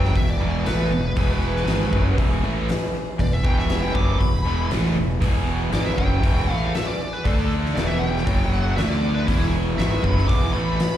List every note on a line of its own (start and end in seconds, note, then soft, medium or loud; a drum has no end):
0.00 0.14 F#1 medium
0.00 0.15 F#2 medium
0.00 0.15 C#3 medium
0.00 0.28 E3 medium
0.00 0.15 F#3 medium
0.00 0.28 G#3 medium
0.00 0.27 B3 medium
0.00 0.26 G#4 medium
0.00 0.15 G5 medium
0.00 snare soft
0.15 0.39 E1 medium
0.15 0.36 E2 medium
0.15 0.36 B2 medium
0.15 0.30 E5 medium
0.15 kick medium
0.15 open hi-hat medium
0.27 0.39 E3 soft
0.27 0.40 G#3 soft
0.27 0.40 B3 soft
0.27 0.41 G#4 medium
0.27 0.66 D5 medium
0.40 0.65 E1 medium
0.40 0.65 E2 medium
0.40 0.65 B2 medium
0.40 0.54 E3 medium
0.40 0.64 E3 loud
0.40 0.53 G#3 medium
0.40 0.53 B3 medium
0.40 0.52 G#4 medium
0.53 0.65 E3 soft
0.53 0.66 G#3 soft
0.53 0.66 B3 soft
0.53 0.66 G#4 soft
0.65 0.90 A1 medium
0.65 0.92 E2 medium
0.65 0.90 A2 loud
0.65 0.92 B2 medium
0.65 0.91 E3 medium
0.65 0.90 E3 medium
0.65 0.91 G#3 medium
0.65 0.91 A3 loud
0.65 0.91 B3 medium
0.65 0.92 G#4 medium
0.65 2.15 B4 loud
0.65 snare loud
0.65 open hi-hat medium
0.91 1.15 E1 medium
0.91 1.12 E2 medium
0.91 1.12 B2 medium
0.91 1.04 E3 medium
0.91 1.04 G#3 medium
0.91 1.04 B3 medium
0.91 1.03 G#4 medium
1.04 1.15 E3 soft
1.04 1.16 G#3 soft
1.04 1.16 B3 soft
1.04 1.16 G#4 medium
1.16 1.64 E1 medium
1.16 1.66 E2 medium
1.16 1.29 E2 medium
1.16 1.29 B2 medium
1.16 1.66 B2 medium
1.16 1.30 E3 medium
1.16 1.66 E3 loud
1.16 1.29 G#3 medium
1.16 1.28 B3 medium
1.16 1.28 G#4 medium
1.16 kick medium
1.16 open hi-hat medium
1.29 1.40 E3 soft
1.29 1.40 G#3 soft
1.29 1.42 B3 medium
1.29 1.42 G#4 medium
1.41 1.66 E3 medium
1.41 1.67 G#3 medium
1.41 1.67 B3 medium
1.41 1.67 G#4 medium
1.56 snare soft
1.66 1.91 G#1 loud
1.66 1.93 E2 medium
1.66 1.91 G#2 medium
1.66 1.93 B2 medium
1.66 1.92 D#3 loud
1.66 1.90 E3 medium
1.66 1.92 G#3 medium
1.66 1.91 G#3 medium
1.66 1.92 B3 medium
1.66 1.92 G#4 medium
1.66 snare loud
1.66 open hi-hat medium
1.91 2.16 F#1 medium
1.91 2.17 F#2 medium
1.91 2.17 C#3 medium
1.91 2.30 E3 medium
1.91 2.17 F#3 medium
1.91 2.30 G#3 medium
1.91 2.29 B3 medium
1.91 2.28 G#4 medium
1.91 kick medium
2.17 2.42 E1 medium
2.17 2.43 E2 medium
2.17 2.42 B2 medium
2.17 2.42 E3 medium
2.17 kick loud
2.17 open hi-hat medium
2.30 2.41 E3 soft
2.30 2.42 G#3 medium
2.30 2.43 B3 medium
2.30 2.43 G#4 medium
2.42 2.67 A1 medium
2.42 2.68 A2 medium
2.42 2.68 E3 medium
2.42 2.68 G#3 medium
2.42 2.68 A3 medium
2.42 2.68 B3 medium
2.42 2.68 G#4 medium
2.68 2.94 E2 medium
2.68 2.94 B2 medium
2.68 2.94 E3 medium
2.68 2.94 G#3 medium
2.68 2.95 B3 medium
2.68 2.95 G#4 medium
2.68 snare loud
2.68 open hi-hat medium
2.95 3.07 E3 medium
2.95 3.07 G#3 medium
2.95 3.07 B3 medium
2.95 3.05 G#4 medium
3.07 3.19 E3 soft
3.07 3.19 G#3 soft
3.07 3.19 B3 medium
3.07 3.19 G#4 soft
3.18 3.43 E1 medium
3.18 3.39 E2 medium
3.18 3.32 E2 medium
3.18 3.40 B2 medium
3.18 3.33 B2 medium
3.18 3.32 E3 medium
3.18 3.32 G#3 medium
3.18 3.31 B3 medium
3.18 3.31 G#4 medium
3.18 3.33 D5 medium
3.18 kick medium
3.18 open hi-hat medium
3.32 3.42 E3 soft
3.32 3.43 G#3 soft
3.32 3.44 B3 soft
3.32 3.44 G#4 soft
3.32 3.45 E5 medium
3.43 3.92 E1 medium
3.43 3.93 E2 medium
3.43 3.94 B2 medium
3.43 3.69 E3 medium
3.43 3.94 E3 medium
3.43 3.69 G#3 medium
3.43 3.69 B3 medium
3.43 3.69 G#4 medium
3.43 3.57 G5 medium
3.43 kick loud
3.58 3.83 E5 medium
3.58 snare soft
3.69 3.95 E2 medium
3.69 3.95 B2 medium
3.69 3.94 E3 medium
3.69 3.94 G#3 medium
3.69 3.95 B3 medium
3.69 3.95 G#4 medium
3.69 snare loud
3.69 open hi-hat medium
3.82 3.95 G5 medium
3.93 4.19 F#1 medium
3.93 4.19 F#2 medium
3.93 4.20 C#3 medium
3.93 4.33 E3 soft
3.93 4.20 F#3 medium
3.93 4.33 G#3 medium
3.93 4.32 B3 medium
3.93 4.31 G#4 medium
3.93 4.19 D6 medium
3.93 kick loud
4.19 4.44 E1 medium
4.19 4.41 E2 medium
4.19 4.41 B2 medium
4.19 4.69 B5 loud
4.19 kick medium
4.19 open hi-hat medium
4.32 4.44 E3 soft
4.32 4.45 G#3 soft
4.32 4.46 B3 soft
4.32 4.46 G#4 soft
4.45 4.69 E1 medium
4.45 4.70 E2 medium
4.45 4.70 B2 medium
4.45 4.70 E3 medium
4.45 4.69 E3 medium
4.45 4.71 G#3 medium
4.45 4.70 B3 medium
4.45 4.71 G#4 medium
4.70 4.95 A1 medium
4.70 4.97 E2 medium
4.70 4.96 A2 medium
4.70 4.97 B2 medium
4.70 4.96 E3 medium
4.70 4.95 E3 medium
4.70 4.96 G#3 medium
4.70 4.96 A3 loud
4.70 4.96 B3 medium
4.70 4.97 G#4 medium
4.70 snare loud
4.70 open hi-hat medium
4.96 5.20 E1 medium
4.96 5.17 E2 medium
4.96 5.17 B2 medium
4.96 5.09 E3 medium
4.96 5.10 G#3 medium
4.96 5.09 B3 medium
4.96 5.09 G#4 medium
5.10 5.22 E3 soft
5.10 5.23 G#3 medium
5.10 5.23 B3 medium
5.10 5.23 G#4 medium
5.21 5.69 E1 medium
5.21 5.71 E2 medium
5.21 5.36 E2 medium
5.21 5.72 B2 medium
5.21 5.36 B2 medium
5.21 5.72 E3 medium
5.21 5.36 E3 medium
5.21 5.36 G#3 medium
5.21 5.35 B3 medium
5.21 5.34 G#4 medium
5.21 kick loud
5.21 open hi-hat medium
5.35 5.47 E3 soft
5.35 5.48 G#3 soft
5.35 5.49 B3 soft
5.35 5.48 G#4 medium
5.48 5.73 E3 medium
5.48 5.73 G#3 medium
5.48 5.74 B3 medium
5.48 5.74 G#4 medium
5.71 5.96 G#1 medium
5.71 5.99 E2 medium
5.71 5.96 G#2 medium
5.71 5.99 B2 medium
5.71 5.97 D#3 medium
5.71 5.97 E3 medium
5.71 5.97 G#3 loud
5.71 5.98 G#3 medium
5.71 5.99 B3 medium
5.71 5.99 G#4 medium
5.71 5.86 D5 loud
5.71 snare loud
5.71 open hi-hat medium
5.86 5.98 E5 medium
5.97 6.22 F#1 medium
5.97 6.22 F#2 medium
5.97 6.22 C#3 medium
5.97 6.37 E3 medium
5.97 6.23 F#3 medium
5.97 6.37 B3 medium
5.97 6.36 G#4 medium
5.97 6.51 G5 medium
5.97 kick loud
6.23 6.47 E1 medium
6.23 6.48 E2 medium
6.23 6.48 B2 medium
6.23 6.48 E3 medium
6.23 kick loud
6.23 open hi-hat medium
6.37 6.49 E3 soft
6.37 6.49 G#3 soft
6.37 6.50 B3 soft
6.37 6.49 G#4 medium
6.48 6.72 A1 medium
6.48 6.74 A2 medium
6.48 6.74 E3 medium
6.48 6.62 E3 medium
6.48 6.63 G#3 medium
6.48 6.74 A3 loud
6.48 6.63 B3 medium
6.48 6.62 G#4 medium
6.48 6.72 F5 medium
6.63 6.75 E3 soft
6.63 6.76 G#3 soft
6.63 6.76 B3 soft
6.63 6.75 G#4 soft
6.74 7.00 E2 medium
6.74 7.01 B2 medium
6.74 6.99 E3 medium
6.74 7.00 G#3 medium
6.74 7.01 B3 medium
6.74 7.01 G#4 medium
6.74 6.87 E5 medium
6.74 snare loud
6.74 open hi-hat medium
6.88 7.12 D5 medium
7.00 7.13 E3 medium
7.00 7.13 G#3 medium
7.00 7.13 B3 medium
7.00 7.12 G#4 medium
7.13 7.26 E3 soft
7.13 7.26 G#3 medium
7.13 7.26 B3 soft
7.13 7.26 G#4 soft
7.13 7.26 B4 medium
7.25 7.72 D2 medium
7.25 7.74 D3 medium
7.25 7.38 D3 medium
7.25 7.75 A3 medium
7.25 7.39 A3 medium
7.25 7.75 D4 medium
7.25 7.39 D4 medium
7.25 7.50 A4 loud
7.25 7.38 A4 medium
7.25 kick loud
7.25 open hi-hat medium
7.39 7.51 A3 soft
7.39 7.52 D4 soft
7.39 7.51 A4 medium
7.52 7.77 D3 medium
7.52 7.77 A3 medium
7.52 7.77 D4 medium
7.52 7.78 A4 medium
7.65 snare soft
7.74 8.22 E1 medium
7.74 8.25 E2 medium
7.74 8.02 E2 medium
7.74 8.26 B2 medium
7.74 8.02 B2 medium
7.74 8.26 E3 loud
7.74 8.02 E3 medium
7.74 8.02 B3 medium
7.74 8.02 E4 medium
7.74 8.02 G#4 medium
7.74 7.87 D5 medium
7.74 snare loud
7.74 open hi-hat soft
7.87 8.00 E5 medium
7.99 8.53 G5 loud
8.03 8.28 E3 medium
8.03 8.28 B3 medium
8.03 8.28 E4 medium
8.03 8.29 G#4 medium
8.16 snare soft
8.25 8.74 F#1 medium
8.25 8.76 F#2 medium
8.25 8.76 C#3 medium
8.25 8.76 F#3 medium
8.25 8.40 F#3 medium
8.25 8.40 C#4 medium
8.25 8.40 F#4 medium
8.25 8.39 C#5 medium
8.25 kick loud
8.25 open hi-hat medium
8.40 8.52 C#4 soft
8.40 8.53 F#4 medium
8.40 8.52 C#5 medium
8.53 8.65 F#3 medium
8.53 8.65 C#4 medium
8.53 8.65 F#4 medium
8.53 8.64 C#5 medium
8.53 8.74 F#5 loud
8.65 8.78 C#4 soft
8.65 8.78 F#4 soft
8.65 8.78 C#5 soft
8.76 9.24 D2 medium
8.76 9.27 D3 medium
8.76 9.02 D3 medium
8.76 9.27 A3 loud
8.76 9.03 A3 medium
8.76 9.27 D4 loud
8.76 9.03 D4 medium
8.76 9.04 A4 medium
8.76 8.89 E5 medium
8.76 snare loud
8.76 open hi-hat medium
8.89 9.14 D5 loud
9.03 9.16 D3 medium
9.03 9.16 A3 medium
9.03 9.16 D4 medium
9.03 9.15 A4 medium
9.14 9.29 A3 soft
9.14 9.29 D4 medium
9.14 9.28 A4 medium
9.14 9.27 B4 medium
9.27 9.75 E1 medium
9.27 9.77 E2 medium
9.27 9.41 E2 medium
9.27 9.77 B2 medium
9.27 9.41 B2 medium
9.27 9.78 E3 loud
9.27 9.41 E3 medium
9.27 9.41 B3 medium
9.27 9.52 E4 loud
9.27 9.40 E4 medium
9.27 9.40 G#4 medium
9.27 kick medium
9.27 open hi-hat medium
9.41 9.53 E3 soft
9.41 9.54 B3 soft
9.41 9.54 E4 soft
9.41 9.54 G#4 medium
9.54 9.79 E3 medium
9.54 9.79 B3 medium
9.54 9.79 E4 medium
9.54 9.79 G#4 medium
9.77 10.02 G#1 loud
9.77 10.04 E2 medium
9.77 10.03 G#2 medium
9.77 10.04 B2 medium
9.77 10.03 D#3 loud
9.77 10.03 E3 medium
9.77 10.03 G#3 loud
9.77 10.05 B3 medium
9.77 10.05 E4 medium
9.77 10.05 G#4 medium
9.77 10.03 E5 loud
9.77 snare loud
9.77 open hi-hat medium
10.03 10.27 F#1 medium
10.03 10.28 F#2 medium
10.03 10.28 C#3 medium
10.03 10.42 E3 medium
10.03 10.29 F#3 loud
10.03 10.43 B3 medium
10.03 10.42 E4 medium
10.03 10.28 B5 medium
10.03 kick loud
10.07 10.42 G#4 medium
10.17 snare soft
10.28 10.53 E1 medium
10.28 10.53 E2 medium
10.28 10.54 B2 medium
10.28 10.53 E3 loud
10.28 10.53 D6 loud
10.28 kick loud
10.28 open hi-hat medium
10.43 10.53 E3 soft
10.43 10.54 B3 soft
10.43 10.55 E4 soft
10.43 10.55 G#4 medium
10.53 10.78 A1 loud
10.53 10.79 A2 loud
10.53 10.79 E3 medium
10.53 10.79 A3 loud
10.53 10.80 B3 medium
10.53 10.79 E4 medium
10.53 10.79 G#4 medium
10.53 10.97 B5 medium
10.79 10.97 E2 medium
10.79 10.97 B2 medium
10.79 10.97 E3 medium
10.79 10.97 B3 medium
10.79 10.97 E4 medium
10.79 10.97 G#4 medium
10.79 snare loud
10.79 open hi-hat medium